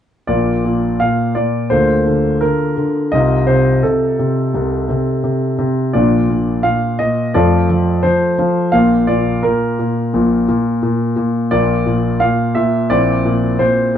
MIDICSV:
0, 0, Header, 1, 2, 480
1, 0, Start_track
1, 0, Key_signature, -2, "major"
1, 0, Tempo, 705882
1, 197, Time_signature, 4, 2, 24, 8
1, 4995, Tempo, 696056
1, 9569, End_track
2, 0, Start_track
2, 0, Title_t, "Grand piano"
2, 0, Program_c, 0, 0
2, 186, Note_on_c, 0, 74, 57
2, 192, Note_on_c, 0, 34, 36
2, 193, Note_on_c, 0, 65, 27
2, 196, Note_on_c, 0, 46, 37
2, 196, Note_on_c, 0, 58, 25
2, 345, Control_c, 0, 64, 127
2, 430, Note_off_c, 0, 34, 0
2, 431, Note_off_c, 0, 46, 0
2, 442, Note_on_c, 0, 46, 34
2, 675, Note_off_c, 0, 46, 0
2, 676, Note_off_c, 0, 74, 0
2, 679, Note_on_c, 0, 77, 57
2, 686, Note_on_c, 0, 46, 32
2, 687, Control_c, 0, 64, 0
2, 916, Note_off_c, 0, 46, 0
2, 918, Note_on_c, 0, 74, 50
2, 919, Note_off_c, 0, 77, 0
2, 926, Note_on_c, 0, 46, 33
2, 1130, Note_off_c, 0, 65, 0
2, 1131, Note_off_c, 0, 58, 0
2, 1154, Note_off_c, 0, 46, 0
2, 1156, Note_on_c, 0, 72, 59
2, 1157, Note_off_c, 0, 74, 0
2, 1161, Note_on_c, 0, 50, 40
2, 1162, Note_on_c, 0, 38, 33
2, 1163, Note_on_c, 0, 65, 31
2, 1164, Note_on_c, 0, 58, 29
2, 1274, Control_c, 0, 64, 127
2, 1391, Note_off_c, 0, 50, 0
2, 1393, Note_off_c, 0, 38, 0
2, 1401, Note_on_c, 0, 50, 38
2, 1631, Note_off_c, 0, 50, 0
2, 1637, Note_off_c, 0, 72, 0
2, 1637, Note_on_c, 0, 70, 54
2, 1641, Note_on_c, 0, 50, 37
2, 1644, Control_c, 0, 64, 0
2, 1873, Note_off_c, 0, 50, 0
2, 1884, Note_on_c, 0, 50, 35
2, 2094, Note_off_c, 0, 65, 0
2, 2095, Note_off_c, 0, 58, 0
2, 2114, Note_off_c, 0, 50, 0
2, 2118, Note_off_c, 0, 70, 0
2, 2119, Note_on_c, 0, 75, 55
2, 2126, Note_on_c, 0, 63, 28
2, 2127, Note_on_c, 0, 36, 34
2, 2127, Note_on_c, 0, 65, 28
2, 2129, Note_on_c, 0, 48, 40
2, 2269, Control_c, 0, 64, 127
2, 2353, Note_off_c, 0, 48, 0
2, 2355, Note_off_c, 0, 36, 0
2, 2358, Note_off_c, 0, 75, 0
2, 2358, Note_on_c, 0, 72, 53
2, 2363, Note_on_c, 0, 48, 35
2, 2593, Note_off_c, 0, 48, 0
2, 2598, Note_off_c, 0, 72, 0
2, 2603, Note_on_c, 0, 69, 47
2, 2606, Control_c, 0, 64, 0
2, 2609, Note_on_c, 0, 48, 32
2, 2837, Note_off_c, 0, 48, 0
2, 2850, Note_on_c, 0, 48, 32
2, 3077, Note_off_c, 0, 48, 0
2, 3088, Note_on_c, 0, 48, 36
2, 3089, Note_on_c, 0, 36, 34
2, 3315, Note_off_c, 0, 36, 0
2, 3315, Note_off_c, 0, 48, 0
2, 3325, Note_on_c, 0, 48, 34
2, 3551, Note_off_c, 0, 48, 0
2, 3561, Note_on_c, 0, 48, 34
2, 3788, Note_off_c, 0, 48, 0
2, 3798, Note_off_c, 0, 69, 0
2, 3798, Note_on_c, 0, 48, 36
2, 4013, Note_off_c, 0, 63, 0
2, 4013, Note_off_c, 0, 65, 0
2, 4030, Note_off_c, 0, 48, 0
2, 4035, Note_on_c, 0, 74, 54
2, 4039, Note_on_c, 0, 65, 29
2, 4041, Note_on_c, 0, 46, 41
2, 4043, Note_on_c, 0, 62, 30
2, 4044, Note_on_c, 0, 34, 34
2, 4187, Control_c, 0, 64, 127
2, 4271, Note_off_c, 0, 46, 0
2, 4273, Note_off_c, 0, 34, 0
2, 4283, Note_on_c, 0, 46, 34
2, 4507, Note_off_c, 0, 46, 0
2, 4509, Note_on_c, 0, 77, 55
2, 4515, Note_off_c, 0, 74, 0
2, 4517, Note_on_c, 0, 46, 33
2, 4522, Control_c, 0, 64, 0
2, 4747, Note_off_c, 0, 46, 0
2, 4752, Note_off_c, 0, 77, 0
2, 4752, Note_on_c, 0, 75, 55
2, 4757, Note_on_c, 0, 46, 36
2, 4967, Note_off_c, 0, 65, 0
2, 4969, Note_off_c, 0, 62, 0
2, 4987, Note_off_c, 0, 46, 0
2, 4991, Note_off_c, 0, 75, 0
2, 4993, Note_on_c, 0, 74, 59
2, 4997, Note_on_c, 0, 41, 39
2, 4997, Note_on_c, 0, 53, 44
2, 4998, Note_on_c, 0, 57, 29
2, 4999, Note_on_c, 0, 65, 28
2, 5143, Control_c, 0, 64, 127
2, 5227, Note_off_c, 0, 41, 0
2, 5227, Note_off_c, 0, 53, 0
2, 5240, Note_on_c, 0, 53, 37
2, 5461, Note_off_c, 0, 53, 0
2, 5465, Note_on_c, 0, 72, 59
2, 5470, Note_off_c, 0, 74, 0
2, 5472, Note_on_c, 0, 53, 35
2, 5475, Control_c, 0, 64, 0
2, 5702, Note_off_c, 0, 53, 0
2, 5712, Note_on_c, 0, 53, 39
2, 5928, Note_off_c, 0, 57, 0
2, 5928, Note_off_c, 0, 65, 0
2, 5942, Note_on_c, 0, 77, 62
2, 5946, Note_off_c, 0, 53, 0
2, 5949, Note_on_c, 0, 58, 31
2, 5949, Note_on_c, 0, 65, 29
2, 5950, Note_off_c, 0, 72, 0
2, 5950, Note_on_c, 0, 34, 39
2, 5950, Note_on_c, 0, 46, 43
2, 6077, Control_c, 0, 64, 127
2, 6183, Note_off_c, 0, 46, 0
2, 6185, Note_off_c, 0, 34, 0
2, 6186, Note_on_c, 0, 74, 57
2, 6188, Note_off_c, 0, 77, 0
2, 6193, Note_on_c, 0, 46, 39
2, 6427, Note_off_c, 0, 46, 0
2, 6430, Note_off_c, 0, 74, 0
2, 6432, Note_on_c, 0, 70, 51
2, 6439, Control_c, 0, 64, 0
2, 6439, Note_on_c, 0, 46, 35
2, 6670, Note_off_c, 0, 46, 0
2, 6682, Note_on_c, 0, 46, 36
2, 6910, Note_off_c, 0, 46, 0
2, 6920, Note_on_c, 0, 34, 41
2, 6920, Note_on_c, 0, 46, 41
2, 7149, Note_off_c, 0, 34, 0
2, 7149, Note_off_c, 0, 46, 0
2, 7159, Note_on_c, 0, 46, 41
2, 7385, Note_off_c, 0, 46, 0
2, 7395, Note_on_c, 0, 46, 40
2, 7617, Note_off_c, 0, 46, 0
2, 7627, Note_off_c, 0, 70, 0
2, 7628, Note_on_c, 0, 46, 39
2, 7837, Note_off_c, 0, 58, 0
2, 7837, Note_off_c, 0, 65, 0
2, 7859, Note_off_c, 0, 46, 0
2, 7867, Note_on_c, 0, 74, 62
2, 7870, Note_on_c, 0, 46, 39
2, 7871, Note_on_c, 0, 58, 28
2, 7872, Note_on_c, 0, 34, 43
2, 7872, Note_on_c, 0, 65, 29
2, 8001, Control_c, 0, 64, 127
2, 8101, Note_off_c, 0, 46, 0
2, 8102, Note_off_c, 0, 34, 0
2, 8111, Note_on_c, 0, 46, 38
2, 8338, Note_off_c, 0, 46, 0
2, 8343, Note_on_c, 0, 77, 61
2, 8346, Note_off_c, 0, 74, 0
2, 8349, Note_on_c, 0, 46, 36
2, 8351, Control_c, 0, 64, 0
2, 8577, Note_off_c, 0, 46, 0
2, 8582, Note_on_c, 0, 76, 55
2, 8584, Note_off_c, 0, 77, 0
2, 8587, Note_on_c, 0, 46, 41
2, 8800, Note_off_c, 0, 58, 0
2, 8801, Note_off_c, 0, 65, 0
2, 8819, Note_off_c, 0, 46, 0
2, 8824, Note_off_c, 0, 76, 0
2, 8824, Note_on_c, 0, 74, 66
2, 8831, Note_on_c, 0, 46, 50
2, 8832, Note_on_c, 0, 60, 35
2, 8833, Note_on_c, 0, 34, 39
2, 8833, Note_on_c, 0, 64, 33
2, 8962, Control_c, 0, 64, 127
2, 9057, Note_off_c, 0, 46, 0
2, 9061, Note_off_c, 0, 34, 0
2, 9067, Note_on_c, 0, 46, 42
2, 9297, Note_off_c, 0, 46, 0
2, 9302, Note_on_c, 0, 72, 58
2, 9304, Note_off_c, 0, 74, 0
2, 9307, Note_on_c, 0, 46, 38
2, 9313, Control_c, 0, 64, 0
2, 9541, Note_off_c, 0, 46, 0
2, 9569, Note_off_c, 0, 60, 0
2, 9569, Note_off_c, 0, 64, 0
2, 9569, Note_off_c, 0, 72, 0
2, 9569, End_track
0, 0, End_of_file